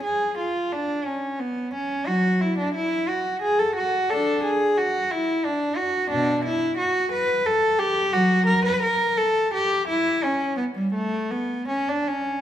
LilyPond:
\new Staff \with { instrumentName = "Cello" } { \time 6/8 \key fis \minor \tempo 4. = 59 gis'8 eis'8 d'8 cis'8 b8 cis'8 | <fis fis'>8 e'16 d'16 e'8 fis'8 gis'16 a'16 fis'8 | <d' a'>8 gis'8 fis'8 e'8 d'8 fis'8 | \key b \minor <b, d'>8 e'8 fis'8 b'8 a'8 g'8 |
<fis fis'>8 ais'16 b'16 ais'8 a'8 g'8 e'8 | cis'8 b16 g16 a8 b8 cis'16 d'16 cis'8 | }